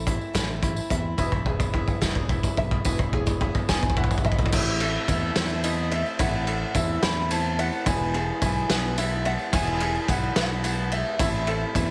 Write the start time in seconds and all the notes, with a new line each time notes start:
Already playing: A1 A4 E5
0.06 E3 A3 C4 E4, kick, closed hi-hat
0.21 tambourine
0.33 A1 A2 E3 A3 C4 E4, kick, snare, closed hi-hat, tambourine
0.48 A3 C4 E4
0.63 E4, kick, closed hi-hat, tambourine
0.76 A3 C4 E4, tambourine
0.90 E2 E3 A3 C4 E4 E5, kick, closed hi-hat
1.18 E1 E2 B2 E3 G#3 B3 E4, kick, tambourine
1.32 E3 G#3 B3 E4, kick
1.46 G#4, kick
1.60 E3 G#3 B3 E4, kick, tambourine
1.73 E3 G#3 B3 E4, kick
1.88 kick, tambourine
2.01 E1 E2 B2 E3 G#3 B3 E4, kick, snare, tambourine
2.15 E3 G#3 B3 E4, kick
2.29 E4, kick, tambourine
2.43 E3 G#3 B3 E4, kick, tambourine
2.56 B1 E3 G#3 B3 E4 E5, kick, tambourine
2.71 kick
2.85 E1 E2 B2 E3 G#3 B3 E4, kick, tambourine
2.99 E3 G#3 B3 E4, kick
3.13 G#4, kick
3.26 E3 G#3 B3 E4, kick, tambourine
3.40 E3 G#3 B3 E4, kick
3.55 kick, tambourine
3.69 E1 E2 B2 E3 G#3 B3 E4 G#5, kick, snare, tambourine
3.82 E3 G#3 B3 E4, kick, tambourine
3.90 kick
3.97 E4 F#5, kick
4.04 kick
4.11 E3 G#3 B3 E4, kick, tambourine
4.18 kick
4.24 B1 E3 G#3 B3 E4 D#5 E5, kick
4.32 kick
4.39 kick, tambourine
4.46 kick
4.52 A1 A2 E3 A3 C4 E4 C5 E5, kick, crash, tambourine
4.80 A3 C4 E4 A4 C5 E5, ride
5.07 E2 E3 A3 C4 E4 C5 D#5 E5, kick, ride, tambourine
5.35 E2 A2 E3 A3 C4 E4 C5, snare, ride
5.62 E3 A3 C4 E4 C5 D#5 E5, ride, tambourine
5.90 A3 C4 E4 C5 E5, ride
6.06 tambourine
6.18 A1 A2 E3 A3 C4 E4 C5 E5 F#5, kick, ride, tambourine
6.46 A3 C4 E4 A4 C5 E5, ride
6.74 E2 E3 A3 C4 E4 C5 E5, kick, ride, tambourine
7.01 E2 A2 E3 A3 C4 E4 C5 E5 B5, snare, ride
7.30 E3 A3 C4 E4 C5 E5 A5, ride, tambourine
7.58 A3 C4 E4 C5 E5 F#5, ride
7.72 tambourine
7.85 E1 E2 B2 E3 G#3 B3 E4 B4 E5 G#5, kick, ride, tambourine
8.13 E3 G#3 B3 E4 G#4 B4 E5, ride
8.40 B1 E3 G#3 B3 E4 B4 E5 G#5, kick, ride, tambourine
8.68 B1 E2 B2 E3 G#3 B3 E4 B4 E5, snare, ride
8.97 E3 G#3 B3 E4 B4 C#5 E5, ride, tambourine
9.25 E3 G#3 B3 E4 B4 E5 F#5, ride
9.39 tambourine
9.53 E1 E2 B2 E3 G#3 B3 E4 B4 E5 G#5, kick, ride, tambourine
9.67 tambourine
9.80 E3 G#3 B3 E4 G#4 B4 E5, ride
9.95 tambourine
10.08 B1 E3 G#3 B3 E4 B4 E5 F#5, kick, ride, tambourine
10.23 tambourine
10.35 B1 E2 B2 E3 G#3 B3 E4 B4 E5 F#5, snare, ride
10.63 E3 G#3 B3 E4 B4 E5, ride, tambourine
10.90 E3 G#3 B3 E4 B4 E5, ride
11.19 A1 A2 E3 A3 C4 E4 C5 E5, kick, ride, tambourine
11.46 A3 C4 E4 A4 C5, ride
11.74 E2 E3 A3 C4 E4 C5 E5, kick, ride, tambourine